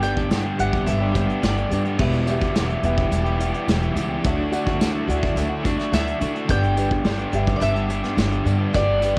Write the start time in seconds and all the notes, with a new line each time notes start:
Already playing: G1 G2 D3
0.02 G3 B3 D4 G4 B4 D5 G5, closed hi-hat, tambourine
0.15 G3 B3 D4 G4, kick
0.30 G1 G2 D3 G3 B3 D4 G4, snare, closed hi-hat, tambourine
0.44 G3 B3 D4 G4
0.58 G1 G3 B3 D4 G4 B4 E5 F#5, closed hi-hat
0.73 kick
0.86 G1 G2 D3 G3 B3 D4 G4 E5, closed hi-hat, tambourine
1.00 G3 B3 D4 G4
1.13 G3 B3 D4 G4, kick, closed hi-hat, tambourine
1.18 G3
1.27 G3 B3 D4 G4, closed hi-hat
1.42 G1 G2 D3 G3 B3 D4 G4 D5, snare, closed hi-hat, tambourine
1.57 closed hi-hat
1.71 G2 G3 B3 D4 G4, closed hi-hat, tambourine
1.85 G3 B3 D4 G4, closed hi-hat
1.98 E1 E2 B2 E3 G3 B3 E4 G4 B4 E5, kick, crash, tambourine
2.13 closed hi-hat
2.26 E3 G3 B3 E4 G4 B4 E5, closed hi-hat, tambourine
2.41 E3 G3 B3 G4, kick, closed hi-hat
2.54 E1 E2 B2 E3 G3 B3 E4 G4, snare, closed hi-hat, tambourine
2.69 E3 G3 B3 G4, closed hi-hat
2.83 E1 E3 G3 B3 E4 G4 B4 E5, closed hi-hat, tambourine
2.98 kick
3.11 E1 E2 B2 E3 G3 E4 G4, closed hi-hat, tambourine
3.24 E3 G3 B3 G4, closed hi-hat
3.39 E3 G3 B3 E4 G4, closed hi-hat, tambourine
3.53 E3 G3 B3 G4, closed hi-hat
3.67 E1 E2 B2 E3 G3 B3 E4 G4, snare, closed hi-hat, tambourine
3.82 closed hi-hat
3.95 C#2 E3 G3 B3 E4 G4, closed hi-hat, tambourine
4.08 E3 G3 B3 G4
4.23 D2 D3 F#3 A3 D4 E4 F#4 D5 E5, kick, closed hi-hat, tambourine
4.52 D3 A3 D4 E4 F#4 D5 F#5, closed hi-hat, tambourine
4.65 A3 D4 F#4, kick
4.79 D2 D3 F#3 A3 D4 E4 F#4, snare, closed hi-hat, tambourine
4.93 A3 D4 F#4
5.07 D2 D3 A3 D4 E4 F#4 D5 F#5, closed hi-hat, tambourine
5.23 kick
5.35 D2 D3 F#3 A3 D4 E4, closed hi-hat, tambourine
5.49 A3 D4 F#4
5.63 D3 A3 D4 E4 F#4, kick, closed hi-hat, tambourine
5.77 A3 D4 F#4, snare, closed hi-hat
5.92 D2 D3 F#3 A3 D4 E4 F#4 E5, snare, closed hi-hat, tambourine
6.07 closed hi-hat
6.20 D3 A3 D4 E4 F#4, closed hi-hat, tambourine
6.34 A3 D4 F#4, closed hi-hat
6.48 G1 G2 D3 G3 B3 D4 G4 B4 D5 G5, kick, closed hi-hat
6.63 closed hi-hat
6.76 G3 B3 D4 G4 B4 D5, closed hi-hat, tambourine
6.89 G3 B3 D4 G4, kick, closed hi-hat
7.03 G1 G2 D3 G3 B3 D4 G4, snare, closed hi-hat, tambourine
7.18 G3 B3 D4 G4, closed hi-hat
7.32 G1 G3 B3 D4 G4 B4 E5, closed hi-hat, tambourine
7.47 kick
7.56 G2 D3 D5
7.60 G1 G3 B3 D4 G4 E5, closed hi-hat, tambourine
7.74 G3 B3 D4 G4, closed hi-hat
7.89 G3 B3 D4 G4, closed hi-hat, tambourine
8.03 G3 B3 D4 G4, snare, closed hi-hat
8.16 G1 G2 D3 G3 B3 D4 G4, snare, closed hi-hat, tambourine
8.32 closed hi-hat
8.44 G2 G3 B3 D4 G4, closed hi-hat, tambourine
8.59 G3 B3 D4 G4
8.74 G1 G2 D3 G3 B3 D4 G4 B4 D5, kick, closed hi-hat, tambourine
9.01 G3 B3 D4 G4 B4 D5, closed hi-hat, tambourine
9.15 G4